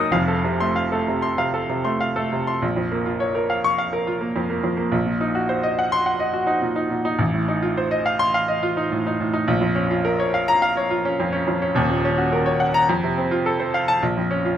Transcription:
grand piano
Already playing: F#2 F#3 A#3 D#4 A#4 D#5 D#6
0.11 F1 F2 F5
0.28 A4
0.44 C3
0.60 A3 C6
0.76 F5
0.92 A3 A4
1.08 C3
1.22 C6
1.38 C3 F5
1.54 A4
1.70 C3
1.85 A3 C6
2.01 F5
2.16 A3 A4
2.32 C3
2.47 C6
2.62 A#1
2.76 F2
2.92 A#3
3.06 F4
3.20 C#5
3.35 A#4
3.50 F5
3.64 C#6
3.78 F5
3.93 A#4
4.07 F4
4.21 A#3
4.36 F2
4.50 A#3
4.63 F2
4.77 A#3
4.92 A#1
5.06 A#2
5.21 D#4
5.35 F#4
5.49 C5
5.63 D#5
5.79 F#5
5.92 C6
6.06 F#5
6.20 D#5
6.33 F#4
6.47 D#4
6.62 A#2
6.76 D#4
6.90 A#2
7.05 D#4
7.19 A1
7.34 A2
7.48 D#4
7.62 F4
7.77 C5
7.91 D#5
8.06 F5
8.19 C6
8.34 F5
8.48 D#5
8.63 F4
8.77 D#4
8.92 A2
9.07 D#4
9.20 A2
9.33 D#4
9.48 A#1
9.61 F2
9.75 C#4
9.91 F4
10.05 A#4
10.20 C#5
10.34 F5
10.48 A#5
10.62 F5
10.77 C#5
10.91 F4
11.05 C#4
11.20 F2
11.33 C#4
11.48 F2
11.62 C#4
11.75 D#1 D#2
11.90 A#2
12.05 C#4
12.18 F#4
12.32 A#4
12.46 C#5
12.60 F#5
12.74 A#5
12.89 F2
13.04 C3
13.18 C4
13.31 F4
13.46 A4
13.60 C5
13.74 F5
13.88 A5
14.02 A#1
14.17 F2
14.31 C#4
14.45 F4

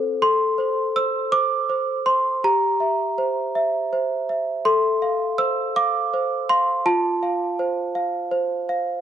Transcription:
celesta
Already playing: C4 A4 C5
0.22 A4 C6
0.58 C5
0.96 C5 E6
1.32 C5 D6
1.70 C5
2.06 C5 C6
2.44 G4 A#5
2.80 E5
3.18 C5
3.55 E5
3.93 C5
4.29 E5
4.65 A4 C6
5.02 F5
5.38 C5 E6
5.76 F5 D6
6.14 C5
6.49 F5 C6
6.86 F4 A5
7.23 F5
7.59 C5
7.95 F5
8.31 C5
8.69 F5

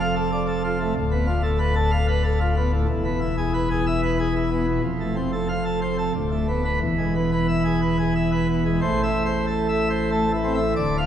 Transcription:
pipe organ
Already playing: F1 F2
0.00 F5
0.16 A4
0.32 D5
0.48 A4
0.64 F4
0.80 A3
0.95 D1 D2
1.11 B3
1.27 F4
1.43 A4
1.59 B4
1.75 A4
1.91 F5
2.08 B4
2.24 A4
2.40 F4
2.56 B3
2.72 A2
2.89 E1 E2
3.05 B3
3.21 E4
3.38 G#4
3.54 B4
3.71 G#4
3.86 E5
4.03 B4
4.19 G#4
4.36 E4
4.51 B3
4.67 B2
4.84 F1 F2
5.00 A3
5.16 C4
5.33 A4
5.49 F5
5.65 A4
5.82 C5
5.98 A4
6.15 D1 D2
6.31 A3
6.48 B3
6.65 B4
6.81 E1 E2
6.98 G#3
7.15 B3
7.32 B4
7.48 E5
7.65 G#4
7.82 B4
7.99 G#4
8.16 E5
8.32 B4
8.48 B3
8.65 G#3
8.81 A1 A2 C5
9.03 E5
9.26 C5
9.47 A4
9.69 E5
9.90 C5
10.12 A3 A4
10.33 E3
10.44 C4
10.54 E5
10.76 D1 D2 D5
10.98 F5

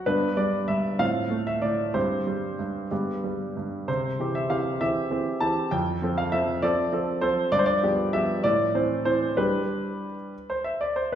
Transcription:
grand piano
0.06 G2 B3 D4 B4
0.37 G3 D5
0.68 G2 E5
0.99 A2 C4 F4 F5
1.30 A3
1.47 E5
1.62 A2 D5
1.94 G2 C4 G4 C5
2.27 G3
2.59 G2
2.91 G2 B3 G4
3.24 G3
3.57 G2
3.88 C3 C5
4.19 E3 C4 G4
4.35 E5
4.50 E3 C4 G4 F5
4.81 E3 C4 G4 E5
5.11 E3 C4 G4
5.41 E3 C4 G4 A5
5.71 F2 G5
6.02 F3 C4 A4
6.18 F5
6.32 F3 C4 A4 E5
6.62 F3 C4 A4 D5
6.92 F3 C4 A4
7.21 F3 C4 A4 C5
7.52 G2 D5
7.59 C5
7.66 D5
7.83 F3 B3 G4
8.13 F3 B3 G4 E5
8.44 A2 D5
8.75 E3 C4 C5
9.05 E3 C4 C5
9.37 G3 D4 G4 B4
10.50 C5
10.64 E5
10.81 D5
10.96 C5

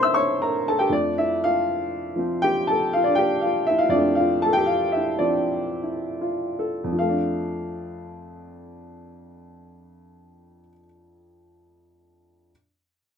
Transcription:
upright piano
Already playing: C3 A#3 C#4 E4 A#4 C5 A#5 C6
0.03 E5 E6
0.14 C#5 C#6
0.42 A#4 A#5
0.68 A4 A5
0.79 G4 G5
0.89 F2 F3 A3 D4 D5
1.18 E4 E5
1.44 F4 F5
2.16 F3 C4
2.42 G4 G5
2.67 A4 A5
2.93 F4 F5
3.04 D4 D5
3.15 G4 G5
3.41 F4 F5
3.67 E4 E5
3.78 F4 F5
3.89 F2 F3 D5
3.94 A3 D4
4.00 D4
4.15 F5
4.20 F4
4.42 A5
4.47 A4
4.53 G5
4.58 G4
4.66 F5
4.70 F4
4.92 E5
4.96 E4
5.19 F3 C4 D5
5.24 D4
5.83 E4
6.21 F4
6.59 A4
6.84 F2
6.92 F3
6.99 A3 F5
7.09 D4

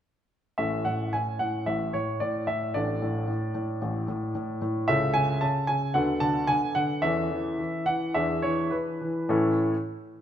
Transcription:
grand piano
0.58 A1 A2 C#4 A4 E5
0.85 A2 F#5
1.13 A2 G#5
1.39 A2 F#5
1.66 A1 A2 E5
1.93 A2 C#5
2.20 A2 D5
2.47 A2 E5
2.74 A1 A2 D4 A4 D5
3.02 A2
3.28 A2
3.55 A2
3.82 A1 A2
4.08 A2
4.35 A2
4.62 A2
4.88 C#2 C#3 C#4 A4 E5
5.14 C#3 G#5
5.41 C#3 A5
5.67 C#3 G#5
5.94 D2 D3 B3 A4 F#5
6.20 D3 A5
6.47 D3 G#5
6.75 D3 F#5
7.02 E2 E3 C#4 A4 E5
7.31 E3
7.59 E3
7.86 E3 F#5
8.14 E2 E3 D4 G#4 E5
8.42 E3 C#5
8.71 E3 B4
9.01 E3
9.29 A2 E3 C#4 E4 A4

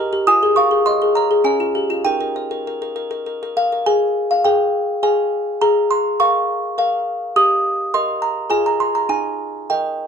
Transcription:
music box
Already playing: D#4 A#4 D#5 A#5
0.13 G4
0.27 F4 G#5 D#6
0.43 G#4
0.56 A#4 F5 C#6
0.71 G#4
0.86 C#5 D#5 C6
1.02 G#4
1.15 C#5 A#5
1.31 G#4
1.44 C#4 C#5 G#5
1.60 F4
1.75 G4
1.90 F4
2.05 D#4 A#4 G5
2.21 A#4
2.36 C5
2.51 A#4
2.67 A#4
2.82 A#4
2.96 A#4
3.11 A#4
3.26 A#4
3.43 A#4
3.57 A#4 F5
3.72 A#4
3.86 G#4 G#5
4.31 F5
4.44 G#4 C5 G5
5.03 G#4 C5 G#5
5.61 G#4 A#5
5.91 C6
6.20 A#4 F5 C#6
6.78 A#4 F5
7.36 G4 D#6
7.94 A#4 D#5 C6
8.22 A#5
8.50 F4 G#4 C5 G#5
8.66 A#5
8.80 C6
8.95 A#5
9.09 D#4 G#5
9.70 A#4 D#5 G5

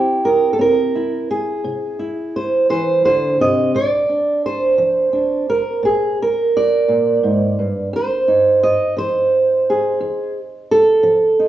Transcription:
steel-string acoustic guitar
Already playing: C3 C4 E4 G4
0.25 A#4
0.53 A4
0.59 C4 A#4
0.95 E4
1.31 G#4
1.64 C3
1.99 E4
2.36 C5
2.69 E3 C5
3.05 D3 C5
3.40 C3 D#5
3.75 A#2 D5
4.09 D4
4.46 C5
4.78 F3
5.13 D4
5.50 A#4
5.83 A#2 G#4
6.22 A#4
6.57 D5
6.88 A#2
7.23 G#2
7.59 G2
7.93 F2 C5
8.28 D#4
8.63 D#5
8.97 F3 C5
9.70 G#4
10.00 F2
10.71 A4
11.03 F3
11.39 D#4

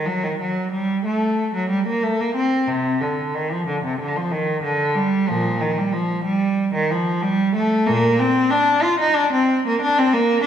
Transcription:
cello
0.06 F#3
0.23 D#3
0.40 F#3
0.71 G3
1.05 A3
1.55 F#3
1.69 G3
1.87 A#3
2.03 A3
2.20 A#3
2.35 C4
2.67 C3
3.01 D3
3.34 D#3
3.52 F3
3.67 D3
3.85 C3
4.00 D3
4.16 F3
4.31 D#3
4.63 D3
4.95 G3
5.28 A#2 F3
5.60 D#3
5.78 G3
5.92 F3
6.24 G3
6.74 D#3
6.91 F3
7.21 G3
7.55 A3
7.87 A#2 A#3
8.19 C4
8.50 D4
8.83 F4
8.99 D#4
9.15 D4
9.33 C4
9.67 A#3
9.81 D4
9.98 C4
10.13 A#3
10.43 D4

